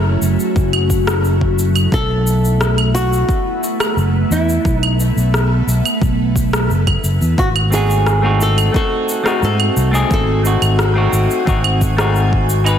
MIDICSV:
0, 0, Header, 1, 6, 480
1, 0, Start_track
1, 0, Tempo, 681818
1, 1356, Time_signature, 4, 2, 24, 8
1, 9001, End_track
2, 0, Start_track
2, 0, Title_t, "Nylon-string guitar"
2, 0, Program_c, 0, 24
2, 0, Note_on_c, 0, 64, 78
2, 127, Note_off_c, 0, 64, 0
2, 1364, Note_on_c, 0, 69, 119
2, 2071, Note_off_c, 0, 69, 0
2, 2073, Note_on_c, 0, 66, 98
2, 3040, Note_on_c, 0, 64, 78
2, 3064, Note_off_c, 0, 66, 0
2, 3357, Note_off_c, 0, 64, 0
2, 3357, Note_on_c, 0, 63, 78
2, 3490, Note_off_c, 0, 63, 0
2, 5201, Note_on_c, 0, 66, 95
2, 5265, Note_off_c, 0, 66, 0
2, 5446, Note_on_c, 0, 68, 99
2, 5927, Note_off_c, 0, 68, 0
2, 5930, Note_on_c, 0, 69, 101
2, 6158, Note_off_c, 0, 69, 0
2, 6167, Note_on_c, 0, 69, 104
2, 6641, Note_off_c, 0, 69, 0
2, 6649, Note_on_c, 0, 69, 92
2, 7126, Note_off_c, 0, 69, 0
2, 7135, Note_on_c, 0, 69, 89
2, 7577, Note_off_c, 0, 69, 0
2, 9001, End_track
3, 0, Start_track
3, 0, Title_t, "Clean electric guitar"
3, 0, Program_c, 1, 27
3, 5423, Note_on_c, 1, 57, 69
3, 5430, Note_on_c, 1, 60, 64
3, 5441, Note_on_c, 1, 63, 66
3, 5452, Note_on_c, 1, 66, 78
3, 5762, Note_off_c, 1, 57, 0
3, 5766, Note_off_c, 1, 60, 0
3, 5771, Note_off_c, 1, 63, 0
3, 5777, Note_off_c, 1, 66, 0
3, 5787, Note_on_c, 1, 57, 92
3, 5795, Note_on_c, 1, 60, 78
3, 5805, Note_on_c, 1, 63, 77
3, 5813, Note_on_c, 1, 66, 93
3, 6122, Note_off_c, 1, 57, 0
3, 6126, Note_off_c, 1, 60, 0
3, 6131, Note_off_c, 1, 63, 0
3, 6135, Note_off_c, 1, 66, 0
3, 6139, Note_on_c, 1, 57, 78
3, 6151, Note_on_c, 1, 60, 69
3, 6159, Note_on_c, 1, 63, 65
3, 6168, Note_on_c, 1, 66, 87
3, 6480, Note_off_c, 1, 57, 0
3, 6486, Note_off_c, 1, 60, 0
3, 6490, Note_off_c, 1, 63, 0
3, 6495, Note_off_c, 1, 66, 0
3, 6502, Note_on_c, 1, 57, 90
3, 6510, Note_on_c, 1, 60, 80
3, 6522, Note_on_c, 1, 63, 82
3, 6529, Note_on_c, 1, 66, 92
3, 6961, Note_off_c, 1, 57, 0
3, 6965, Note_off_c, 1, 60, 0
3, 6971, Note_off_c, 1, 63, 0
3, 6974, Note_off_c, 1, 66, 0
3, 6979, Note_on_c, 1, 57, 93
3, 6988, Note_on_c, 1, 60, 82
3, 6997, Note_on_c, 1, 63, 84
3, 7004, Note_on_c, 1, 68, 104
3, 7318, Note_off_c, 1, 57, 0
3, 7323, Note_off_c, 1, 60, 0
3, 7327, Note_off_c, 1, 63, 0
3, 7331, Note_off_c, 1, 68, 0
3, 7342, Note_on_c, 1, 57, 69
3, 7352, Note_on_c, 1, 60, 67
3, 7360, Note_on_c, 1, 63, 61
3, 7370, Note_on_c, 1, 66, 81
3, 7682, Note_off_c, 1, 57, 0
3, 7687, Note_off_c, 1, 60, 0
3, 7691, Note_off_c, 1, 63, 0
3, 7696, Note_off_c, 1, 66, 0
3, 7700, Note_on_c, 1, 57, 88
3, 7712, Note_on_c, 1, 60, 83
3, 7718, Note_on_c, 1, 63, 84
3, 7729, Note_on_c, 1, 66, 101
3, 8039, Note_off_c, 1, 57, 0
3, 8045, Note_off_c, 1, 60, 0
3, 8048, Note_off_c, 1, 63, 0
3, 8053, Note_off_c, 1, 66, 0
3, 8060, Note_on_c, 1, 57, 77
3, 8069, Note_on_c, 1, 60, 70
3, 8078, Note_on_c, 1, 63, 71
3, 8088, Note_on_c, 1, 66, 86
3, 8401, Note_off_c, 1, 57, 0
3, 8405, Note_off_c, 1, 60, 0
3, 8410, Note_off_c, 1, 63, 0
3, 8415, Note_off_c, 1, 66, 0
3, 8425, Note_on_c, 1, 57, 79
3, 8433, Note_on_c, 1, 60, 76
3, 8441, Note_on_c, 1, 63, 80
3, 8453, Note_on_c, 1, 66, 93
3, 8882, Note_off_c, 1, 57, 0
3, 8886, Note_off_c, 1, 60, 0
3, 8890, Note_off_c, 1, 63, 0
3, 8896, Note_off_c, 1, 66, 0
3, 8901, Note_on_c, 1, 59, 90
3, 8908, Note_on_c, 1, 63, 91
3, 8919, Note_on_c, 1, 64, 83
3, 8927, Note_off_c, 1, 64, 0
3, 8929, Note_on_c, 1, 71, 110
3, 9001, Note_off_c, 1, 59, 0
3, 9001, Note_off_c, 1, 63, 0
3, 9001, Note_off_c, 1, 71, 0
3, 9001, End_track
4, 0, Start_track
4, 0, Title_t, "Ambient pad"
4, 0, Program_c, 2, 92
4, 0, Note_on_c, 2, 54, 76
4, 0, Note_on_c, 2, 57, 87
4, 0, Note_on_c, 2, 61, 73
4, 0, Note_on_c, 2, 64, 68
4, 0, Note_on_c, 2, 66, 74
4, 1328, Note_off_c, 2, 61, 0
4, 1329, Note_off_c, 2, 54, 0
4, 1330, Note_off_c, 2, 57, 0
4, 1336, Note_off_c, 2, 66, 0
4, 1351, Note_on_c, 2, 59, 75
4, 1352, Note_on_c, 2, 57, 81
4, 5165, Note_off_c, 2, 59, 0
4, 5166, Note_off_c, 2, 57, 0
4, 5170, Note_off_c, 2, 64, 0
4, 5197, Note_on_c, 2, 60, 74
4, 5197, Note_on_c, 2, 80, 82
4, 5201, Note_on_c, 2, 66, 86
4, 9001, Note_off_c, 2, 60, 0
4, 9001, Note_off_c, 2, 66, 0
4, 9001, Note_off_c, 2, 80, 0
4, 9001, End_track
5, 0, Start_track
5, 0, Title_t, "Fingered electric bass"
5, 0, Program_c, 3, 33
5, 0, Note_on_c, 3, 30, 87
5, 108, Note_off_c, 3, 30, 0
5, 150, Note_on_c, 3, 30, 80
5, 245, Note_off_c, 3, 30, 0
5, 394, Note_on_c, 3, 30, 92
5, 1309, Note_off_c, 3, 30, 0
5, 1351, Note_on_c, 3, 35, 95
5, 2267, Note_off_c, 3, 35, 0
5, 2792, Note_on_c, 3, 30, 80
5, 2977, Note_off_c, 3, 30, 0
5, 3031, Note_on_c, 3, 40, 90
5, 3216, Note_off_c, 3, 40, 0
5, 3273, Note_on_c, 3, 35, 89
5, 3589, Note_off_c, 3, 35, 0
5, 3635, Note_on_c, 3, 35, 88
5, 3949, Note_off_c, 3, 35, 0
5, 3992, Note_on_c, 3, 35, 79
5, 4086, Note_off_c, 3, 35, 0
5, 4233, Note_on_c, 3, 35, 89
5, 4708, Note_off_c, 3, 35, 0
5, 4712, Note_on_c, 3, 30, 85
5, 4897, Note_off_c, 3, 30, 0
5, 4953, Note_on_c, 3, 30, 95
5, 5047, Note_off_c, 3, 30, 0
5, 5077, Note_on_c, 3, 40, 84
5, 5167, Note_off_c, 3, 40, 0
5, 5195, Note_on_c, 3, 32, 87
5, 6110, Note_off_c, 3, 32, 0
5, 6635, Note_on_c, 3, 44, 86
5, 6818, Note_off_c, 3, 44, 0
5, 6874, Note_on_c, 3, 36, 89
5, 7057, Note_off_c, 3, 36, 0
5, 7114, Note_on_c, 3, 32, 85
5, 7430, Note_off_c, 3, 32, 0
5, 7474, Note_on_c, 3, 32, 82
5, 7788, Note_off_c, 3, 32, 0
5, 7832, Note_on_c, 3, 32, 80
5, 7926, Note_off_c, 3, 32, 0
5, 8075, Note_on_c, 3, 32, 87
5, 8990, Note_off_c, 3, 32, 0
5, 9001, End_track
6, 0, Start_track
6, 0, Title_t, "Drums"
6, 156, Note_on_c, 9, 82, 73
6, 227, Note_off_c, 9, 82, 0
6, 280, Note_on_c, 9, 82, 43
6, 350, Note_off_c, 9, 82, 0
6, 394, Note_on_c, 9, 36, 104
6, 397, Note_on_c, 9, 82, 32
6, 464, Note_off_c, 9, 36, 0
6, 468, Note_off_c, 9, 82, 0
6, 516, Note_on_c, 9, 75, 69
6, 586, Note_off_c, 9, 75, 0
6, 633, Note_on_c, 9, 36, 59
6, 636, Note_on_c, 9, 82, 80
6, 704, Note_off_c, 9, 36, 0
6, 707, Note_off_c, 9, 82, 0
6, 756, Note_on_c, 9, 37, 72
6, 759, Note_on_c, 9, 82, 44
6, 826, Note_off_c, 9, 37, 0
6, 829, Note_off_c, 9, 82, 0
6, 877, Note_on_c, 9, 82, 33
6, 947, Note_off_c, 9, 82, 0
6, 995, Note_on_c, 9, 36, 57
6, 1066, Note_off_c, 9, 36, 0
6, 1118, Note_on_c, 9, 82, 74
6, 1188, Note_off_c, 9, 82, 0
6, 1236, Note_on_c, 9, 75, 68
6, 1239, Note_on_c, 9, 82, 42
6, 1306, Note_off_c, 9, 75, 0
6, 1309, Note_off_c, 9, 82, 0
6, 1353, Note_on_c, 9, 36, 120
6, 1356, Note_on_c, 9, 82, 35
6, 1423, Note_off_c, 9, 36, 0
6, 1427, Note_off_c, 9, 82, 0
6, 1598, Note_on_c, 9, 82, 75
6, 1669, Note_off_c, 9, 82, 0
6, 1722, Note_on_c, 9, 82, 41
6, 1792, Note_off_c, 9, 82, 0
6, 1835, Note_on_c, 9, 37, 68
6, 1838, Note_on_c, 9, 82, 31
6, 1906, Note_off_c, 9, 37, 0
6, 1909, Note_off_c, 9, 82, 0
6, 1958, Note_on_c, 9, 75, 70
6, 2028, Note_off_c, 9, 75, 0
6, 2080, Note_on_c, 9, 82, 74
6, 2151, Note_off_c, 9, 82, 0
6, 2203, Note_on_c, 9, 82, 41
6, 2274, Note_off_c, 9, 82, 0
6, 2314, Note_on_c, 9, 36, 100
6, 2319, Note_on_c, 9, 82, 31
6, 2384, Note_off_c, 9, 36, 0
6, 2390, Note_off_c, 9, 82, 0
6, 2560, Note_on_c, 9, 82, 79
6, 2630, Note_off_c, 9, 82, 0
6, 2677, Note_on_c, 9, 37, 74
6, 2677, Note_on_c, 9, 75, 65
6, 2680, Note_on_c, 9, 82, 42
6, 2747, Note_off_c, 9, 37, 0
6, 2747, Note_off_c, 9, 75, 0
6, 2750, Note_off_c, 9, 82, 0
6, 2799, Note_on_c, 9, 82, 30
6, 2870, Note_off_c, 9, 82, 0
6, 3040, Note_on_c, 9, 82, 75
6, 3110, Note_off_c, 9, 82, 0
6, 3162, Note_on_c, 9, 82, 41
6, 3232, Note_off_c, 9, 82, 0
6, 3274, Note_on_c, 9, 36, 109
6, 3281, Note_on_c, 9, 82, 33
6, 3344, Note_off_c, 9, 36, 0
6, 3351, Note_off_c, 9, 82, 0
6, 3401, Note_on_c, 9, 75, 70
6, 3471, Note_off_c, 9, 75, 0
6, 3520, Note_on_c, 9, 82, 76
6, 3590, Note_off_c, 9, 82, 0
6, 3644, Note_on_c, 9, 82, 42
6, 3714, Note_off_c, 9, 82, 0
6, 3759, Note_on_c, 9, 37, 63
6, 3762, Note_on_c, 9, 82, 31
6, 3830, Note_off_c, 9, 37, 0
6, 3833, Note_off_c, 9, 82, 0
6, 4003, Note_on_c, 9, 82, 71
6, 4073, Note_off_c, 9, 82, 0
6, 4122, Note_on_c, 9, 75, 66
6, 4125, Note_on_c, 9, 82, 42
6, 4192, Note_off_c, 9, 75, 0
6, 4195, Note_off_c, 9, 82, 0
6, 4235, Note_on_c, 9, 36, 100
6, 4242, Note_on_c, 9, 82, 32
6, 4305, Note_off_c, 9, 36, 0
6, 4313, Note_off_c, 9, 82, 0
6, 4475, Note_on_c, 9, 36, 59
6, 4481, Note_on_c, 9, 82, 76
6, 4545, Note_off_c, 9, 36, 0
6, 4551, Note_off_c, 9, 82, 0
6, 4600, Note_on_c, 9, 37, 72
6, 4603, Note_on_c, 9, 82, 41
6, 4670, Note_off_c, 9, 37, 0
6, 4673, Note_off_c, 9, 82, 0
6, 4721, Note_on_c, 9, 82, 31
6, 4791, Note_off_c, 9, 82, 0
6, 4838, Note_on_c, 9, 36, 57
6, 4838, Note_on_c, 9, 75, 77
6, 4908, Note_off_c, 9, 36, 0
6, 4908, Note_off_c, 9, 75, 0
6, 4958, Note_on_c, 9, 82, 69
6, 5028, Note_off_c, 9, 82, 0
6, 5081, Note_on_c, 9, 82, 41
6, 5151, Note_off_c, 9, 82, 0
6, 5196, Note_on_c, 9, 36, 116
6, 5199, Note_on_c, 9, 82, 32
6, 5266, Note_off_c, 9, 36, 0
6, 5270, Note_off_c, 9, 82, 0
6, 5320, Note_on_c, 9, 75, 75
6, 5390, Note_off_c, 9, 75, 0
6, 5439, Note_on_c, 9, 82, 78
6, 5510, Note_off_c, 9, 82, 0
6, 5563, Note_on_c, 9, 82, 40
6, 5634, Note_off_c, 9, 82, 0
6, 5678, Note_on_c, 9, 37, 61
6, 5681, Note_on_c, 9, 82, 31
6, 5748, Note_off_c, 9, 37, 0
6, 5751, Note_off_c, 9, 82, 0
6, 5920, Note_on_c, 9, 82, 72
6, 5990, Note_off_c, 9, 82, 0
6, 6040, Note_on_c, 9, 75, 73
6, 6043, Note_on_c, 9, 82, 40
6, 6110, Note_off_c, 9, 75, 0
6, 6113, Note_off_c, 9, 82, 0
6, 6156, Note_on_c, 9, 36, 94
6, 6161, Note_on_c, 9, 82, 29
6, 6226, Note_off_c, 9, 36, 0
6, 6231, Note_off_c, 9, 82, 0
6, 6398, Note_on_c, 9, 82, 76
6, 6469, Note_off_c, 9, 82, 0
6, 6517, Note_on_c, 9, 37, 72
6, 6520, Note_on_c, 9, 82, 41
6, 6588, Note_off_c, 9, 37, 0
6, 6590, Note_off_c, 9, 82, 0
6, 6637, Note_on_c, 9, 82, 31
6, 6707, Note_off_c, 9, 82, 0
6, 6756, Note_on_c, 9, 75, 76
6, 6827, Note_off_c, 9, 75, 0
6, 6877, Note_on_c, 9, 82, 75
6, 6947, Note_off_c, 9, 82, 0
6, 7000, Note_on_c, 9, 82, 40
6, 7070, Note_off_c, 9, 82, 0
6, 7116, Note_on_c, 9, 36, 109
6, 7118, Note_on_c, 9, 82, 33
6, 7186, Note_off_c, 9, 36, 0
6, 7188, Note_off_c, 9, 82, 0
6, 7358, Note_on_c, 9, 82, 69
6, 7429, Note_off_c, 9, 82, 0
6, 7477, Note_on_c, 9, 75, 74
6, 7480, Note_on_c, 9, 82, 40
6, 7548, Note_off_c, 9, 75, 0
6, 7551, Note_off_c, 9, 82, 0
6, 7595, Note_on_c, 9, 37, 66
6, 7598, Note_on_c, 9, 82, 29
6, 7665, Note_off_c, 9, 37, 0
6, 7668, Note_off_c, 9, 82, 0
6, 7837, Note_on_c, 9, 82, 70
6, 7907, Note_off_c, 9, 82, 0
6, 7959, Note_on_c, 9, 82, 37
6, 8029, Note_off_c, 9, 82, 0
6, 8077, Note_on_c, 9, 36, 98
6, 8078, Note_on_c, 9, 82, 30
6, 8147, Note_off_c, 9, 36, 0
6, 8149, Note_off_c, 9, 82, 0
6, 8197, Note_on_c, 9, 75, 73
6, 8267, Note_off_c, 9, 75, 0
6, 8316, Note_on_c, 9, 36, 53
6, 8318, Note_on_c, 9, 82, 68
6, 8387, Note_off_c, 9, 36, 0
6, 8389, Note_off_c, 9, 82, 0
6, 8437, Note_on_c, 9, 37, 73
6, 8440, Note_on_c, 9, 82, 38
6, 8507, Note_off_c, 9, 37, 0
6, 8510, Note_off_c, 9, 82, 0
6, 8558, Note_on_c, 9, 82, 31
6, 8629, Note_off_c, 9, 82, 0
6, 8679, Note_on_c, 9, 36, 56
6, 8749, Note_off_c, 9, 36, 0
6, 8797, Note_on_c, 9, 82, 70
6, 8867, Note_off_c, 9, 82, 0
6, 8916, Note_on_c, 9, 75, 77
6, 8919, Note_on_c, 9, 82, 40
6, 8986, Note_off_c, 9, 75, 0
6, 8989, Note_off_c, 9, 82, 0
6, 9001, End_track
0, 0, End_of_file